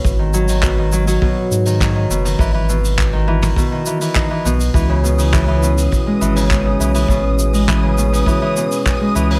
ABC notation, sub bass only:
X:1
M:4/4
L:1/8
Q:1/4=102
K:C#m
V:1 name="Sub bass" clef=bass
G,,,4 z G,,2 F,,, | G,,,4 z3 B,,, | C,,4 z G,,,2 B,,, | A,,,4 z3 C,, |]